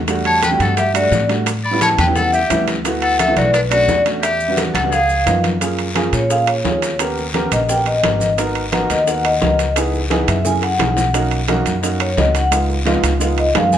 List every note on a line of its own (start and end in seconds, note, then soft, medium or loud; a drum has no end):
0.00 0.54 E2 medium
0.08 0.38 G3 medium
0.08 0.39 A3 medium
0.08 0.39 D4 medium
0.08 0.39 F#4 medium
0.08 high bongo medium
0.08 high conga soft
0.08 high timbale medium
0.08 long guiro medium
0.08 maracas medium
0.25 0.42 C#5 medium
0.25 0.44 A5 medium
0.25 high conga soft
0.25 high timbale medium
0.42 0.51 B4 medium
0.42 0.51 G5 medium
0.42 high bongo medium
0.42 high conga loud
0.42 high timbale medium
0.42 short guiro medium
0.42 maracas medium
0.51 0.82 G3 medium
0.51 0.82 A3 medium
0.51 0.82 D4 medium
0.51 0.82 F#4 medium
0.59 1.08 G2 medium
0.59 0.76 A4 medium
0.59 0.76 F#5 medium
0.59 high bongo soft
0.59 high conga medium
0.59 high timbale medium
0.59 short guiro medium
0.59 maracas soft
0.77 0.93 G4 medium
0.77 0.94 E5 medium
0.77 high bongo medium
0.77 high conga soft
0.77 high timbale medium
0.77 long guiro medium
0.77 maracas medium
0.94 1.19 G3 medium
0.94 1.19 A3 medium
0.94 1.19 D4 medium
0.94 1.27 F#4 medium
0.94 1.19 F#4 medium
0.94 1.27 D5 medium
0.94 high bongo soft
0.94 high conga soft
0.94 high timbale medium
0.94 maracas medium
1.11 1.92 A2 medium
1.11 high bongo soft
1.11 low bongo medium
1.11 high conga medium
1.11 short guiro medium
1.11 maracas medium
1.28 1.46 G3 medium
1.28 1.46 A3 medium
1.28 1.47 D4 medium
1.28 1.47 F#4 medium
1.28 high bongo soft
1.28 high conga soft
1.28 high timbale medium
1.28 short guiro medium
1.28 maracas soft
1.46 high bongo medium
1.46 high conga soft
1.46 high timbale medium
1.46 long guiro medium
1.46 maracas medium
1.64 1.80 D5 medium
1.64 1.81 B5 loud
1.64 high conga soft
1.71 1.96 G3 medium
1.71 1.96 B3 medium
1.71 1.97 C#4 medium
1.71 1.97 E4 medium
1.81 1.89 C#5 medium
1.81 1.90 A5 loud
1.81 high bongo medium
1.81 high conga loud
1.81 high timbale medium
1.81 short guiro medium
1.81 maracas medium
1.98 2.47 E2 medium
1.98 2.07 B4 medium
1.98 2.07 G5 medium
1.98 high bongo soft
1.98 high conga medium
1.98 low conga medium
1.98 high timbale medium
1.98 short guiro medium
1.98 maracas soft
2.06 2.37 G3 medium
2.06 2.37 B3 medium
2.06 2.37 C#4 medium
2.06 2.38 E4 medium
2.15 2.32 A4 medium
2.15 2.34 F#5 medium
2.15 high bongo medium
2.15 high conga soft
2.15 low conga medium
2.15 long guiro medium
2.15 maracas medium
2.33 2.65 G4 medium
2.33 2.65 E5 medium
2.33 high bongo soft
2.33 high conga soft
2.33 maracas medium
2.50 3.31 D2 medium
2.50 2.74 G3 medium
2.50 2.75 B3 medium
2.50 2.75 C#4 medium
2.50 2.75 E4 medium
2.50 high bongo soft
2.50 low bongo medium
2.50 high conga medium
2.50 high timbale medium
2.50 short guiro medium
2.50 maracas medium
2.68 high bongo soft
2.68 high conga medium
2.68 high timbale medium
2.68 short guiro medium
2.68 maracas soft
2.84 3.15 A3 medium
2.84 3.15 B3 medium
2.84 3.15 E4 medium
2.84 3.16 F#4 loud
2.84 high bongo medium
2.84 high conga soft
2.84 high timbale medium
2.84 long guiro medium
2.84 maracas medium
3.02 3.19 A4 medium
3.02 3.20 F#5 loud
3.02 high conga soft
3.02 high timbale medium
3.19 3.35 A4 medium
3.19 3.35 E5 loud
3.19 high bongo medium
3.19 high conga loud
3.19 high timbale medium
3.19 short guiro medium
3.19 maracas medium
3.28 3.54 A3 medium
3.28 3.54 B3 medium
3.28 3.54 E4 medium
3.28 3.55 F#4 medium
3.36 3.85 B1 medium
3.36 3.53 F#4 medium
3.36 3.55 D5 medium
3.36 high bongo soft
3.36 high conga medium
3.36 high timbale medium
3.36 short guiro medium
3.36 maracas soft
3.54 3.61 D4 medium
3.54 3.62 B4 medium
3.54 high bongo medium
3.54 high conga soft
3.54 high timbale medium
3.54 long guiro medium
3.54 maracas medium
3.70 3.95 A3 medium
3.70 3.95 C#4 medium
3.70 3.96 D4 medium
3.70 4.03 F#4 medium
3.70 3.96 F#4 medium
3.70 4.03 D5 medium
3.70 high bongo soft
3.70 high conga soft
3.70 high timbale medium
3.70 maracas medium
3.88 4.69 E2 medium
3.88 high bongo soft
3.88 low bongo medium
3.88 high conga medium
3.88 low timbale medium
3.88 short guiro medium
3.88 maracas medium
4.05 4.23 A3 medium
4.05 4.23 C#4 medium
4.05 4.23 D4 medium
4.05 4.24 F#4 medium
4.05 high bongo soft
4.05 high conga soft
4.05 high timbale medium
4.05 short guiro medium
4.05 maracas soft
4.22 4.55 G4 medium
4.22 4.55 E5 medium
4.22 high bongo medium
4.22 high conga soft
4.22 high timbale medium
4.22 long guiro medium
4.22 maracas medium
4.40 high conga soft
4.40 maracas medium
4.48 4.73 G3 medium
4.48 4.73 B3 medium
4.48 4.73 D4 medium
4.48 4.74 F#4 medium
4.57 high bongo medium
4.57 high conga medium
4.57 high timbale medium
4.57 short guiro medium
4.57 maracas medium
4.74 5.23 C#2 medium
4.74 4.82 A4 medium
4.74 4.82 F#5 medium
4.74 high bongo soft
4.74 high conga medium
4.74 low conga medium
4.74 high timbale medium
4.74 short guiro medium
4.74 maracas soft
4.83 4.92 G3 medium
4.83 4.92 B3 medium
4.83 4.93 D4 medium
4.83 4.93 F#4 medium
4.91 5.40 G#4 medium
4.91 5.41 F5 medium
4.91 high bongo medium
4.91 high conga soft
4.91 long guiro medium
4.91 maracas medium
5.09 high bongo soft
5.09 high conga soft
5.09 maracas medium
5.26 6.07 F#2 medium
5.26 5.50 A#3 medium
5.26 5.51 B3 medium
5.26 5.51 D#4 medium
5.26 5.51 F4 medium
5.26 high bongo soft
5.26 low bongo medium
5.26 high conga medium
5.26 high timbale medium
5.26 short guiro medium
5.26 maracas medium
5.44 high bongo soft
5.44 high conga medium
5.44 high timbale medium
5.44 short guiro medium
5.44 maracas soft
5.60 5.85 A#3 medium
5.60 5.85 C#4 medium
5.60 5.86 F4 medium
5.60 5.86 G#4 medium
5.60 high bongo medium
5.60 high conga soft
5.60 high timbale medium
5.60 long guiro medium
5.60 maracas medium
5.79 high conga soft
5.79 high timbale medium
5.79 maracas soft
5.95 6.20 A#3 medium
5.95 6.20 C#4 medium
5.95 6.20 F4 medium
5.95 6.20 G#4 loud
5.95 high bongo medium
5.95 high conga medium
5.95 high timbale medium
5.95 low timbale medium
5.95 short guiro medium
5.95 maracas soft
6.13 6.61 A#2 medium
6.13 6.30 C#5 medium
6.13 high bongo soft
6.13 high conga soft
6.13 high timbale medium
6.13 short guiro medium
6.13 maracas medium
6.29 6.54 A#3 medium
6.29 6.54 C#4 medium
6.29 6.55 F4 medium
6.29 6.55 G#4 medium
6.29 6.48 F5 medium
6.29 high bongo medium
6.29 high conga soft
6.29 long guiro medium
6.29 maracas medium
6.47 6.96 C#5 medium
6.47 high bongo soft
6.47 high conga soft
6.47 high timbale medium
6.47 maracas soft
6.64 7.46 D#2 medium
6.64 6.89 A#3 medium
6.64 6.89 C#4 medium
6.64 6.89 F4 medium
6.64 6.90 G#4 medium
6.64 high bongo medium
6.64 low bongo medium
6.64 high conga medium
6.64 low timbale medium
6.64 short guiro medium
6.64 maracas soft
6.82 high bongo soft
6.82 high conga soft
6.82 high timbale medium
6.82 short guiro medium
6.82 maracas medium
6.99 7.24 B3 medium
6.99 7.24 C#4 medium
6.99 7.24 G4 medium
6.99 7.24 A#4 medium
6.99 high bongo medium
6.99 high conga soft
6.99 high timbale medium
6.99 long guiro medium
6.99 maracas medium
7.17 high bongo soft
7.17 high conga soft
7.17 maracas soft
7.33 7.58 B3 medium
7.33 7.59 C#4 medium
7.33 7.59 G4 medium
7.33 7.59 A#4 loud
7.33 high bongo medium
7.33 high conga medium
7.33 high timbale medium
7.33 low timbale medium
7.33 short guiro medium
7.33 maracas soft
7.51 8.00 A#1 medium
7.51 7.69 D#5 medium
7.51 high conga soft
7.51 low conga medium
7.51 high timbale medium
7.51 short guiro medium
7.51 maracas medium
7.69 7.93 B3 medium
7.69 7.93 C#4 medium
7.69 7.94 G4 medium
7.69 7.94 A#4 medium
7.69 7.86 G5 medium
7.69 high bongo medium
7.69 high conga soft
7.69 long guiro medium
7.69 maracas medium
7.86 8.35 D#5 medium
7.86 high bongo soft
7.86 high conga soft
7.86 high timbale medium
7.86 maracas soft
8.03 8.84 G#1 medium
8.03 8.27 B3 medium
8.03 8.27 C#4 medium
8.03 8.28 G4 medium
8.03 8.28 A#4 medium
8.03 high bongo medium
8.03 low bongo medium
8.03 high conga medium
8.03 high timbale medium
8.03 low timbale medium
8.03 short guiro medium
8.03 maracas soft
8.20 high bongo soft
8.20 high conga medium
8.20 short guiro medium
8.20 maracas medium
8.37 8.62 B3 medium
8.37 8.62 D#4 medium
8.37 8.63 F#4 medium
8.37 8.63 A#4 loud
8.37 high bongo medium
8.37 high conga soft
8.37 high timbale medium
8.37 long guiro medium
8.37 maracas medium
8.55 high conga soft
8.55 high timbale medium
8.55 maracas soft
8.72 8.96 B3 loud
8.72 8.97 D#4 medium
8.72 8.97 F#4 medium
8.72 8.97 A#4 loud
8.72 high bongo medium
8.72 high conga loud
8.72 high timbale medium
8.72 low timbale medium
8.72 short guiro medium
8.72 maracas soft
8.90 9.38 D#2 medium
8.90 9.07 D#5 medium
8.90 high bongo soft
8.90 high timbale medium
8.90 short guiro medium
8.90 maracas medium
9.06 9.31 B3 medium
9.06 9.31 D#4 medium
9.06 9.31 F#4 medium
9.06 9.32 A#4 medium
9.06 9.24 F#5 medium
9.06 high bongo medium
9.06 high conga soft
9.06 long guiro medium
9.06 maracas medium
9.24 9.73 D#5 medium
9.24 high bongo soft
9.24 high conga soft
9.24 high timbale medium
9.24 maracas soft
9.41 10.22 C#2 medium
9.41 9.65 B3 medium
9.41 9.66 D#4 medium
9.41 9.66 F#4 medium
9.41 9.66 A#4 medium
9.41 high bongo medium
9.41 low bongo medium
9.41 high conga medium
9.41 low timbale medium
9.41 short guiro medium
9.41 maracas soft
9.59 high bongo soft
9.59 high conga soft
9.59 high timbale medium
9.59 short guiro medium
9.59 maracas medium
9.76 10.00 B3 medium
9.76 10.00 D#4 medium
9.76 10.01 E4 medium
9.76 10.01 G#4 loud
9.76 high bongo medium
9.76 high conga soft
9.76 high timbale medium
9.76 long guiro medium
9.76 maracas medium
9.93 high bongo soft
9.93 high conga soft
9.93 maracas soft
10.10 10.35 B3 medium
10.10 10.35 D#4 medium
10.10 10.35 E4 medium
10.10 10.35 G#4 loud
10.10 high bongo medium
10.10 high conga medium
10.10 high timbale medium
10.10 low timbale medium
10.10 short guiro medium
10.10 maracas soft
10.28 10.76 F#2 medium
10.28 10.45 E5 medium
10.28 high conga soft
10.28 low conga medium
10.28 high timbale medium
10.28 short guiro medium
10.28 maracas medium
10.44 10.69 A#3 medium
10.44 10.69 C#4 medium
10.44 10.69 E4 medium
10.44 10.70 G#4 medium
10.44 10.62 G#5 medium
10.44 high bongo medium
10.44 high conga soft
10.44 low conga medium
10.44 long guiro medium
10.44 maracas medium
10.62 11.11 F#5 medium
10.62 high bongo medium
10.62 high timbale medium
10.62 maracas soft
10.79 11.60 B1 medium
10.79 11.04 A#3 medium
10.79 11.04 C#4 medium
10.79 11.04 E4 medium
10.79 11.04 G#4 medium
10.79 low bongo loud
10.79 high conga medium
10.79 high timbale medium
10.79 low timbale medium
10.79 short guiro medium
10.79 maracas soft
10.97 low bongo medium
10.97 high conga medium
10.97 short guiro medium
10.97 maracas medium
11.14 11.38 A#3 medium
11.14 11.38 C#4 medium
11.14 11.39 D#4 medium
11.14 11.39 F#4 medium
11.14 high bongo medium
11.14 high conga soft
11.14 high timbale medium
11.14 long guiro medium
11.14 maracas medium
11.31 high conga soft
11.31 high timbale medium
11.31 maracas soft
11.48 11.72 A#3 loud
11.48 11.73 C#4 medium
11.48 11.73 D#4 medium
11.48 11.73 F#4 loud
11.48 high bongo medium
11.48 high conga medium
11.48 high timbale medium
11.48 low timbale medium
11.48 short guiro medium
11.48 maracas soft
11.65 12.14 F#2 medium
11.65 high bongo soft
11.65 high conga soft
11.65 high timbale medium
11.65 short guiro medium
11.65 maracas medium
11.82 12.07 A#3 medium
11.82 12.07 C#4 medium
11.82 12.07 D#4 medium
11.82 12.08 F#4 medium
11.82 high bongo medium
11.82 high conga soft
11.82 long guiro medium
11.82 maracas medium
12.00 12.18 C#5 medium
12.00 high bongo soft
12.00 high conga soft
12.00 high timbale medium
12.00 maracas soft
12.16 12.98 C#2 medium
12.16 12.41 A#3 medium
12.16 12.41 C#4 medium
12.16 12.42 D#4 medium
12.16 12.42 F#4 medium
12.16 12.35 D#5 medium
12.16 high bongo medium
12.16 low bongo medium
12.16 high conga medium
12.16 low timbale medium
12.16 short guiro medium
12.16 maracas soft
12.35 12.52 F#5 loud
12.35 high bongo soft
12.35 high conga soft
12.35 high timbale medium
12.35 short guiro medium
12.35 maracas medium
12.51 12.76 G#3 medium
12.51 12.76 B3 medium
12.51 12.76 D#4 medium
12.51 12.76 F4 medium
12.51 high bongo medium
12.51 high conga soft
12.51 high timbale medium
12.51 long guiro medium
12.51 maracas medium
12.69 high bongo soft
12.69 high conga soft
12.69 maracas soft
12.85 13.10 G#3 medium
12.85 13.10 B3 medium
12.85 13.10 D#4 medium
12.85 13.11 F4 loud
12.85 high bongo medium
12.85 high conga medium
12.85 high timbale medium
12.85 low timbale medium
12.85 short guiro medium
12.85 maracas soft
13.03 13.51 C#2 medium
13.03 high conga soft
13.03 low conga medium
13.03 high timbale medium
13.03 short guiro medium
13.03 maracas medium
13.19 13.44 G#3 medium
13.19 13.45 B3 medium
13.19 13.45 D#4 medium
13.19 13.45 F4 medium
13.19 high bongo medium
13.19 high conga soft
13.19 long guiro medium
13.19 maracas medium
13.38 13.55 D#5 medium
13.38 high bongo soft
13.38 high conga soft
13.38 high timbale medium
13.38 maracas soft
13.55 13.78 F#2 medium
13.55 13.78 G#3 medium
13.55 13.78 B3 medium
13.55 13.78 D#4 medium
13.55 13.78 G#4 medium
13.55 13.73 F5 medium
13.55 high bongo medium
13.55 low bongo medium
13.55 high conga medium
13.55 high timbale medium
13.55 low timbale medium
13.55 short guiro medium
13.55 maracas soft
13.72 13.78 G#5 loud
13.72 high bongo soft
13.72 high conga medium
13.72 short guiro medium
13.72 maracas medium